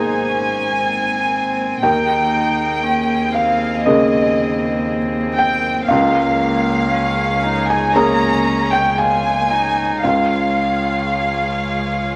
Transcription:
0.00 1.85 G#1 soft
0.00 1.79 G#2 soft
0.00 1.79 A#3 soft
0.00 0.30 D#4 soft
0.00 1.79 D#4 soft
0.00 1.79 G#4 soft
0.00 1.79 C5 soft
0.00 1.79 G#5 medium
0.00 1.83 G#5 medium
0.29 0.82 C#4 soft
0.80 1.84 C4 soft
1.82 5.86 D#2 soft
1.82 5.91 D#2 soft
1.82 5.86 A#3 soft
1.82 2.85 D#4 medium
1.82 5.87 G#4 soft
1.82 5.90 D#5 soft
1.82 3.32 G5 medium
1.82 3.33 G5 medium
2.83 3.34 C#4 soft
3.35 5.90 C4 medium
3.35 3.83 F5 medium
3.35 3.86 F5 medium
3.85 5.86 C#3 soft
3.85 5.86 A#3 soft
3.85 5.86 G#4 soft
3.85 4.87 D#5 medium
3.85 4.84 D#5 medium
5.37 5.86 G5 medium
5.88 10.03 C#2 medium
5.88 10.00 C#2 medium
5.88 9.99 A#3 soft
5.88 6.91 A#3 medium
5.88 9.99 G#4 medium
5.88 9.99 C#5 medium
5.88 7.65 F5 medium
6.92 7.45 C#4 medium
7.44 7.96 D#4 medium
7.68 7.94 G#5 medium
7.94 10.00 A#3 soft
7.94 8.98 C#4 medium
7.94 10.00 C#4 soft
7.94 10.01 G#4 soft
7.94 8.73 A#5 medium
7.94 8.69 A#5 medium
8.73 8.97 G5 medium
8.73 8.99 G5 medium
8.98 9.52 F4 medium
8.98 10.00 G#5 medium
8.98 10.04 G#5 medium
9.50 10.06 D#4 medium
10.03 12.16 C#2 soft
10.03 12.16 G#3 soft
10.03 12.16 F4 medium
10.03 12.16 G#4 soft
10.03 12.16 C#5 soft
10.03 12.16 F5 medium

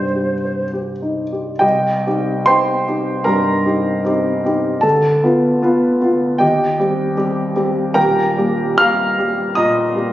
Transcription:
0.00 1.61 C2 soft
0.00 0.34 G2 soft
0.00 1.02 D#4 soft
0.00 0.15 G4 soft
0.00 0.45 C5 soft
0.00 0.75 C5 soft
0.15 0.63 G4 soft
0.45 0.92 C5 soft
0.73 1.22 G4 soft
1.02 1.50 D#4 soft
1.32 1.59 G4 soft
1.59 2.04 C2 medium
1.59 2.06 G4 medium
1.59 2.44 D#5 medium
1.59 2.46 G5 medium
2.06 2.45 C4 soft
2.06 2.45 D#4 soft
2.06 2.45 G4 soft
2.46 2.84 C4 soft
2.46 2.84 D#4 soft
2.46 2.85 G4 medium
2.46 3.23 C5 medium
2.46 3.23 G5 medium
2.46 3.26 C6 loud
2.88 3.23 C4 soft
2.88 3.23 D#4 soft
2.88 3.23 G4 soft
3.24 3.64 G2 medium
3.24 4.79 A#4 medium
3.24 4.82 A#5 medium
3.66 4.01 C4 soft
3.66 4.01 D#4 soft
3.66 4.02 G4 soft
4.05 4.40 C4 soft
4.05 4.41 D#4 soft
4.05 4.41 G4 soft
4.45 4.80 C4 soft
4.45 4.80 D#4 soft
4.45 4.81 G4 soft
4.81 5.22 D2 medium
4.81 6.37 A4 medium
4.81 6.40 A5 medium
5.24 5.59 B3 soft
5.24 5.59 F4 medium
5.62 5.98 B3 medium
5.62 5.98 F4 medium
6.01 6.37 B3 soft
6.01 6.37 F4 medium
6.38 6.78 D#2 medium
6.38 6.78 G4 medium
6.38 7.52 D#5 medium
6.38 7.55 G5 medium
6.79 7.14 G3 soft
6.79 7.14 C4 medium
6.79 7.14 G4 medium
7.17 7.52 G3 medium
7.17 7.52 C4 medium
7.17 7.53 G4 medium
7.56 7.92 G3 medium
7.56 7.92 C4 medium
7.56 7.92 G4 medium
7.94 8.35 D#1 medium
7.94 8.36 D#2 medium
7.94 8.75 A#4 medium
7.94 8.75 G5 medium
7.94 8.78 A#5 medium
8.37 8.75 G3 soft
8.37 8.75 A#3 soft
8.37 8.76 G4 medium
8.78 9.15 G3 medium
8.78 9.15 A#3 medium
8.78 9.16 G4 medium
8.78 9.52 F5 medium
8.78 9.52 A#5 medium
8.78 9.56 F6 loud
9.19 9.53 G3 soft
9.19 9.53 A#3 soft
9.19 9.53 G4 medium
9.55 9.93 A#2 medium
9.55 10.13 D#5 medium
9.55 10.13 A#5 medium
9.55 10.13 D#6 loud
9.95 10.13 G3 medium
9.95 10.13 A#3 medium
9.95 10.13 G4 medium

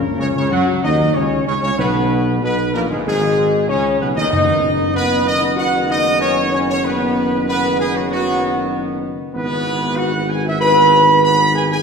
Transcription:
0.00 0.15 F#2 loud
0.00 0.19 A#4 loud
0.18 0.34 C#2 loud
0.18 0.27 C#3 medium
0.18 0.34 C#4 medium
0.18 0.27 C#5 loud
0.35 0.50 C#2 medium
0.35 0.51 C#3 loud
0.35 0.43 C#4 medium
0.35 0.51 C#5 loud
0.51 0.66 F#2 loud
0.51 0.81 F#3 loud
0.51 0.81 F#4 loud
0.51 0.66 F#5 loud
0.83 1.13 D#2 loud
0.83 0.97 D#3 medium
0.83 1.13 D#4 loud
0.83 1.13 D#5 loud
1.15 1.45 C#2 medium
1.15 1.29 C#3 medium
1.15 1.45 C#4 medium
1.15 1.46 C#5 loud
1.46 1.54 C#2 loud
1.46 1.53 C#3 loud
1.46 1.53 C#4 loud
1.46 1.62 C#5 loud
1.61 1.70 C#2 loud
1.61 1.69 C#3 loud
1.61 1.69 C#4 loud
1.61 1.78 C#5 loud
1.77 2.38 B1 loud
1.77 2.38 B2 loud
1.77 2.38 B3 loud
1.77 2.38 B4 loud
2.41 2.76 B1 loud
2.41 2.56 B2 loud
2.41 2.57 B3 loud
2.41 2.72 B4 loud
2.73 2.89 A#1 loud
2.73 2.89 A#2 loud
2.73 2.89 A#3 medium
2.73 2.81 A#4 loud
2.89 2.97 G#1 medium
2.89 3.03 G#2 loud
2.89 3.04 G#3 medium
2.89 2.97 G#4 medium
3.05 3.71 G#1 loud
3.05 3.65 G#2 loud
3.05 3.65 G#3 loud
3.05 3.66 G#4 loud
3.68 4.00 C#2 loud
3.68 4.00 C#3 loud
3.68 3.99 C#4 loud
3.68 3.83 C#5 loud
4.00 4.16 B1 medium
4.00 4.09 B2 medium
4.00 4.16 B3 medium
4.00 4.08 B4 loud
4.16 4.24 D#2 loud
4.16 4.32 D#3 loud
4.16 4.31 D#4 loud
4.16 4.29 D#5 loud
4.31 9.18 F#1 loud
4.31 5.23 F#2 loud
4.31 4.92 D#3 medium
4.31 4.92 B3 medium
4.31 4.92 D#4 loud
4.31 4.91 D#5 loud
4.95 5.55 D#3 medium
4.95 5.25 B3 loud
4.95 5.55 B3 medium
4.95 5.25 B4 loud
5.25 5.33 D#4 loud
5.25 5.42 D#5 loud
5.41 5.48 D#4 medium
5.41 5.51 D#5 loud
5.57 6.81 D#3 loud
5.57 6.81 B3 medium
5.57 5.87 F#4 loud
5.57 5.88 F#5 loud
5.90 6.04 D#4 loud
5.90 6.20 D#5 loud
6.20 6.35 C#4 loud
6.20 6.51 C#5 loud
6.52 6.68 C#4 loud
6.52 6.60 C#5 loud
6.69 6.76 C#4 loud
6.69 6.84 C#5 loud
6.84 7.43 D#3 medium
6.84 7.43 B3 medium
6.84 7.44 B3 loud
6.84 7.46 B4 loud
7.48 8.06 D#3 loud
7.48 7.77 B3 loud
7.48 8.07 B3 medium
7.48 7.77 B4 loud
7.79 7.86 G#3 loud
7.79 7.94 G#4 loud
7.94 8.09 F#3 medium
7.94 8.10 F#4 loud
8.10 9.18 D#3 loud
8.10 8.69 F#3 loud
8.10 9.18 B3 loud
8.10 8.69 F#4 loud
9.34 11.82 G#1 loud
9.34 10.58 E3 loud
9.34 9.93 B3 loud
9.34 10.58 B3 loud
9.34 9.94 B4 loud
9.96 10.11 F#4 loud
9.96 10.30 F#5 loud
10.29 10.45 G#4 medium
10.29 10.46 G#5 loud
10.45 10.53 E4 medium
10.45 10.62 E5 loud
10.60 11.21 E3 medium
10.60 11.21 B3 medium
10.60 11.20 B4 loud
10.60 11.20 B5 loud
11.23 11.82 E3 medium
11.23 11.82 B3 medium
11.23 11.38 B4 loud
11.23 11.53 B5 loud
11.54 11.69 G#4 loud
11.54 11.63 G#5 loud
11.70 11.78 G#4 loud
11.70 11.82 G#5 loud

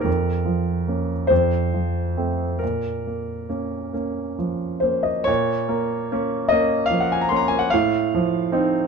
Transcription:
0.01 1.26 F2 soft
0.01 1.28 A#4 medium
0.45 1.13 F3 soft
0.88 1.26 A#3 soft
0.88 1.27 C#4 soft
1.27 2.57 F2 soft
1.27 2.60 C5 medium
1.74 2.44 F3 soft
2.17 2.58 A3 soft
2.17 2.58 C4 soft
2.59 5.24 A#2 soft
2.59 3.93 A#4 medium
3.07 3.48 A#3 soft
3.49 3.90 A#3 soft
3.49 3.90 C#4 soft
3.93 4.35 A#3 soft
3.93 4.35 C#4 soft
4.38 5.10 F3 soft
4.80 5.23 A#3 soft
4.80 5.23 C#4 soft
4.80 5.04 C5 soft
5.03 5.26 D#5 medium
5.24 7.68 A#2 medium
5.24 6.50 C#5 medium
5.69 6.11 A#3 soft
6.12 6.49 A#3 soft
6.12 6.48 C#4 soft
6.49 6.88 A#3 soft
6.49 6.88 C#4 soft
6.49 6.86 D#5 medium
6.86 7.02 F5 medium
6.91 7.55 F3 soft
7.00 7.14 F#5 soft
7.12 7.23 G#5 medium
7.21 7.31 A#5 medium
7.29 7.68 A#3 soft
7.29 7.68 C#4 soft
7.29 7.39 C6 medium
7.36 7.48 A#5 medium
7.48 7.60 G#5 medium
7.59 7.71 F#5 medium
7.70 8.87 A2 medium
7.70 8.87 F5 medium
8.15 8.75 F3 soft
8.52 8.85 C4 soft
8.52 8.86 D#4 soft

